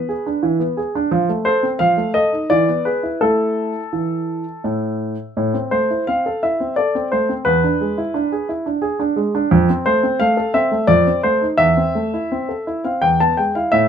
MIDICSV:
0, 0, Header, 1, 2, 480
1, 0, Start_track
1, 0, Key_signature, 0, "minor"
1, 0, Tempo, 692042
1, 781, Time_signature, 3, 2, 24, 8
1, 1744, Tempo, 710900
1, 4144, Tempo, 689655
1, 7504, Tempo, 707547
1, 9531, End_track
2, 0, Start_track
2, 0, Title_t, "Grand piano"
2, 0, Program_c, 0, 0
2, 0, Note_on_c, 0, 71, 81
2, 61, Note_on_c, 0, 68, 46
2, 184, Note_on_c, 0, 62, 44
2, 189, Note_off_c, 0, 68, 0
2, 296, Note_on_c, 0, 52, 60
2, 310, Note_off_c, 0, 62, 0
2, 414, Note_on_c, 0, 59, 48
2, 416, Note_off_c, 0, 52, 0
2, 535, Note_on_c, 0, 68, 49
2, 539, Note_off_c, 0, 71, 0
2, 545, Note_off_c, 0, 59, 0
2, 661, Note_on_c, 0, 62, 52
2, 664, Note_off_c, 0, 68, 0
2, 773, Note_on_c, 0, 53, 77
2, 781, Note_off_c, 0, 62, 0
2, 892, Note_off_c, 0, 53, 0
2, 896, Note_on_c, 0, 57, 46
2, 1005, Note_on_c, 0, 72, 79
2, 1013, Note_on_c, 0, 69, 50
2, 1023, Note_off_c, 0, 57, 0
2, 1130, Note_on_c, 0, 60, 50
2, 1142, Note_off_c, 0, 69, 0
2, 1153, Note_off_c, 0, 72, 0
2, 1242, Note_on_c, 0, 77, 85
2, 1250, Note_on_c, 0, 53, 62
2, 1255, Note_off_c, 0, 60, 0
2, 1368, Note_on_c, 0, 57, 44
2, 1371, Note_off_c, 0, 53, 0
2, 1484, Note_on_c, 0, 75, 78
2, 1488, Note_on_c, 0, 69, 54
2, 1492, Note_off_c, 0, 77, 0
2, 1501, Note_off_c, 0, 57, 0
2, 1613, Note_on_c, 0, 63, 38
2, 1622, Note_off_c, 0, 69, 0
2, 1732, Note_on_c, 0, 74, 85
2, 1735, Note_off_c, 0, 75, 0
2, 1737, Note_on_c, 0, 52, 62
2, 1739, Note_off_c, 0, 63, 0
2, 1856, Note_off_c, 0, 52, 0
2, 1860, Note_on_c, 0, 59, 44
2, 1972, Note_on_c, 0, 71, 60
2, 1976, Note_off_c, 0, 74, 0
2, 1976, Note_on_c, 0, 68, 41
2, 1986, Note_off_c, 0, 59, 0
2, 2093, Note_on_c, 0, 64, 44
2, 2105, Note_off_c, 0, 68, 0
2, 2210, Note_off_c, 0, 64, 0
2, 2213, Note_on_c, 0, 69, 74
2, 2217, Note_off_c, 0, 71, 0
2, 2220, Note_on_c, 0, 64, 43
2, 2221, Note_on_c, 0, 57, 53
2, 2560, Note_off_c, 0, 57, 0
2, 2608, Note_off_c, 0, 64, 0
2, 2698, Note_on_c, 0, 52, 46
2, 3037, Note_off_c, 0, 52, 0
2, 3180, Note_on_c, 0, 45, 49
2, 3182, Note_off_c, 0, 69, 0
2, 3519, Note_off_c, 0, 45, 0
2, 3670, Note_on_c, 0, 45, 59
2, 3784, Note_off_c, 0, 45, 0
2, 3786, Note_on_c, 0, 60, 40
2, 3903, Note_on_c, 0, 72, 67
2, 3907, Note_on_c, 0, 57, 43
2, 3912, Note_off_c, 0, 60, 0
2, 4032, Note_off_c, 0, 57, 0
2, 4033, Note_on_c, 0, 64, 39
2, 4119, Note_off_c, 0, 72, 0
2, 4147, Note_on_c, 0, 77, 72
2, 4154, Note_on_c, 0, 60, 40
2, 4155, Note_off_c, 0, 64, 0
2, 4277, Note_off_c, 0, 60, 0
2, 4277, Note_on_c, 0, 69, 42
2, 4389, Note_off_c, 0, 77, 0
2, 4395, Note_on_c, 0, 76, 63
2, 4397, Note_on_c, 0, 64, 39
2, 4399, Note_off_c, 0, 69, 0
2, 4516, Note_on_c, 0, 60, 39
2, 4519, Note_off_c, 0, 64, 0
2, 4608, Note_off_c, 0, 76, 0
2, 4627, Note_on_c, 0, 74, 73
2, 4638, Note_off_c, 0, 60, 0
2, 4638, Note_on_c, 0, 69, 48
2, 4757, Note_on_c, 0, 60, 40
2, 4759, Note_off_c, 0, 69, 0
2, 4844, Note_off_c, 0, 74, 0
2, 4873, Note_on_c, 0, 72, 62
2, 4879, Note_off_c, 0, 60, 0
2, 4879, Note_on_c, 0, 57, 44
2, 4995, Note_on_c, 0, 60, 43
2, 5000, Note_off_c, 0, 57, 0
2, 5015, Note_off_c, 0, 72, 0
2, 5104, Note_on_c, 0, 71, 80
2, 5111, Note_off_c, 0, 60, 0
2, 5111, Note_on_c, 0, 40, 63
2, 5225, Note_off_c, 0, 40, 0
2, 5236, Note_on_c, 0, 62, 47
2, 5355, Note_on_c, 0, 56, 49
2, 5357, Note_off_c, 0, 62, 0
2, 5473, Note_on_c, 0, 64, 45
2, 5476, Note_off_c, 0, 56, 0
2, 5587, Note_on_c, 0, 62, 51
2, 5594, Note_off_c, 0, 64, 0
2, 5711, Note_off_c, 0, 62, 0
2, 5713, Note_on_c, 0, 68, 48
2, 5821, Note_off_c, 0, 71, 0
2, 5829, Note_on_c, 0, 64, 49
2, 5833, Note_off_c, 0, 68, 0
2, 5948, Note_on_c, 0, 62, 43
2, 5951, Note_off_c, 0, 64, 0
2, 6056, Note_on_c, 0, 68, 59
2, 6070, Note_off_c, 0, 62, 0
2, 6181, Note_on_c, 0, 62, 55
2, 6184, Note_off_c, 0, 68, 0
2, 6297, Note_on_c, 0, 56, 54
2, 6306, Note_off_c, 0, 62, 0
2, 6425, Note_off_c, 0, 56, 0
2, 6426, Note_on_c, 0, 62, 55
2, 6541, Note_on_c, 0, 41, 82
2, 6543, Note_off_c, 0, 62, 0
2, 6657, Note_off_c, 0, 41, 0
2, 6669, Note_on_c, 0, 60, 53
2, 6780, Note_on_c, 0, 72, 79
2, 6786, Note_on_c, 0, 57, 53
2, 6791, Note_off_c, 0, 60, 0
2, 6903, Note_on_c, 0, 60, 54
2, 6909, Note_off_c, 0, 57, 0
2, 7016, Note_on_c, 0, 77, 88
2, 7020, Note_off_c, 0, 72, 0
2, 7023, Note_on_c, 0, 57, 58
2, 7028, Note_off_c, 0, 60, 0
2, 7139, Note_on_c, 0, 69, 51
2, 7148, Note_off_c, 0, 57, 0
2, 7256, Note_on_c, 0, 60, 54
2, 7256, Note_on_c, 0, 76, 81
2, 7260, Note_off_c, 0, 77, 0
2, 7267, Note_off_c, 0, 69, 0
2, 7378, Note_on_c, 0, 57, 49
2, 7387, Note_off_c, 0, 60, 0
2, 7478, Note_off_c, 0, 76, 0
2, 7489, Note_on_c, 0, 74, 92
2, 7493, Note_on_c, 0, 41, 69
2, 7503, Note_off_c, 0, 57, 0
2, 7615, Note_off_c, 0, 41, 0
2, 7622, Note_on_c, 0, 60, 45
2, 7711, Note_off_c, 0, 74, 0
2, 7733, Note_on_c, 0, 72, 74
2, 7738, Note_on_c, 0, 57, 46
2, 7749, Note_off_c, 0, 60, 0
2, 7854, Note_on_c, 0, 63, 43
2, 7867, Note_off_c, 0, 57, 0
2, 7880, Note_off_c, 0, 72, 0
2, 7964, Note_on_c, 0, 76, 92
2, 7969, Note_on_c, 0, 40, 67
2, 7979, Note_off_c, 0, 63, 0
2, 8093, Note_off_c, 0, 40, 0
2, 8097, Note_on_c, 0, 60, 44
2, 8220, Note_on_c, 0, 57, 44
2, 8227, Note_off_c, 0, 60, 0
2, 8346, Note_on_c, 0, 64, 46
2, 8349, Note_off_c, 0, 57, 0
2, 8468, Note_on_c, 0, 60, 45
2, 8471, Note_off_c, 0, 64, 0
2, 8584, Note_on_c, 0, 69, 38
2, 8592, Note_off_c, 0, 60, 0
2, 8708, Note_on_c, 0, 64, 45
2, 8710, Note_off_c, 0, 69, 0
2, 8788, Note_off_c, 0, 76, 0
2, 8825, Note_on_c, 0, 77, 58
2, 8826, Note_on_c, 0, 60, 40
2, 8832, Note_off_c, 0, 64, 0
2, 8942, Note_on_c, 0, 79, 76
2, 8945, Note_off_c, 0, 77, 0
2, 8946, Note_off_c, 0, 60, 0
2, 8947, Note_on_c, 0, 40, 56
2, 9063, Note_off_c, 0, 40, 0
2, 9064, Note_off_c, 0, 79, 0
2, 9069, Note_on_c, 0, 59, 41
2, 9069, Note_on_c, 0, 81, 72
2, 9184, Note_on_c, 0, 79, 58
2, 9188, Note_off_c, 0, 81, 0
2, 9191, Note_on_c, 0, 56, 37
2, 9194, Note_off_c, 0, 59, 0
2, 9305, Note_off_c, 0, 79, 0
2, 9306, Note_on_c, 0, 77, 62
2, 9309, Note_on_c, 0, 64, 42
2, 9315, Note_off_c, 0, 56, 0
2, 9417, Note_on_c, 0, 76, 89
2, 9425, Note_off_c, 0, 77, 0
2, 9425, Note_on_c, 0, 45, 69
2, 9427, Note_off_c, 0, 64, 0
2, 9531, Note_off_c, 0, 45, 0
2, 9531, Note_off_c, 0, 76, 0
2, 9531, End_track
0, 0, End_of_file